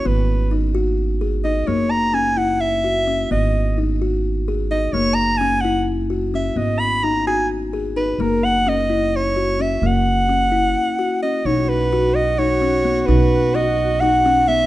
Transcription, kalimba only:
X:1
M:7/8
L:1/8
Q:1/4=129
K:F#mix
V:1 name="Kalimba"
B,2 D F2 G D | A,2 C E2 F C | B,2 D F2 G D | A,2 C E2 F C |
B,2 D F2 G D | A,2 C E2 F C | A,2 C E2 F C | D2 F2 D C B, |
D2 F2 D C B, |]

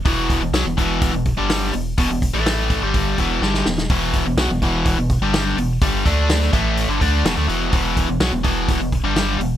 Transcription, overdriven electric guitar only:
X:1
M:4/4
L:1/16
Q:1/4=125
K:Em
V:1 name="Overdriven electric guitar" clef=bass
[E,,B,,E,]3 [E,,B,,] [B,,F,] [E,,B,,] [E,,B,,E,]3 [E,,B,,]2 [G,,D,G,]3 [E,,B,,]2 | [E,,B,,] [E,,B,,]2 [A,,E,A,]4 [G,,D,G,]3 [E,,B,,E,]2 [G,,D,G,]2 [E,,B,,]2 | [E,,B,,E,]3 [E,,B,,] [B,,F,] [E,,B,,] [E,,B,,E,]3 [E,,B,,]2 [G,,D,G,]3 [E,,B,,]2 | [G,,D,G,]2 [D,A,D]4 [A,,E,A,]3 [G,,D,] [D,A,D]2 [E,,B,,] [D,A,] [E,,B,,E,]2 |
[E,,B,,E,]3 [E,,B,,] [B,,F,] [E,,B,,] [E,,B,,E,]3 [E,,B,,]2 [G,,D,G,]3 [E,,B,,]2 |]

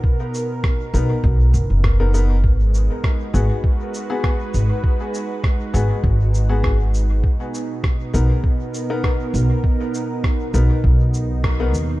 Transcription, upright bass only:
X:1
M:4/4
L:1/16
Q:"Swing 16ths" 1/4=100
K:B
V:1 name="Upright bass" clef=bass
z6 B,,, z B,,,2 F,,, F,,,4- F,,, | G,,,3 z3 G,,, z6 z G,,, z | z6 G,,, z G,,,8 | z6 B,,, z6 z B,,, z |
z6 B,,, z B,,,6 D,,2 |]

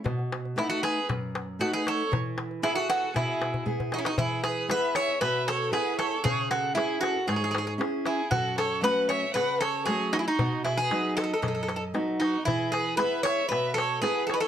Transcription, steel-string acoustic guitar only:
X:1
M:4/4
L:1/8
Q:1/4=116
K:E
V:1 name="Steel-string acoustic guitar"
B,,2 [A,B,D]2 F,,2 [A,B,D]2 | E,2 [B,EG]2 B,,2 [B,EG]2 | E,2 [B,EG]2 B,,2 [B,EG]2 | C,2 [CEG]2 G,,2 [CEG]2 |
F,,2 [F,A,C]2 C,2 [F,A,C]2 | B,,2 [F,B,D]2 F,,2 [F,B,D]2 | E,2 [B,EG]2 B,,2 [B,EG]2 |]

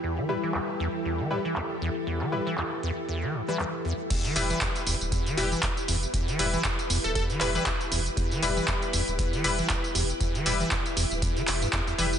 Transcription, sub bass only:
X:1
M:4/4
L:1/16
Q:"Swing 16ths" 1/4=118
K:Em
V:1 name="Sub bass" clef=bass
z16 | z16 | z2 E,,, z3 E,,, D,,, z2 E,,, z3 E,,, z | z2 E,,, z3 E,,, D,,, z2 E,,, z3 E,,, z |
z2 E,,, z3 E,,, D,,, z2 E,,, z3 E,,, z | z2 E,,, z3 E,,, D,,, z2 E,,, z3 E,,, z |]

